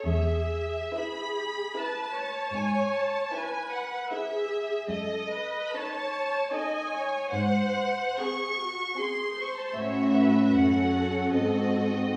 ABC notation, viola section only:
X:1
M:3/4
L:1/8
Q:1/4=76
K:E
V:1 name="Viola section"
G2 G2 B c- | c2 B2 G2 | A B c2 d c | ^B2 G F G B |
c B A4 |]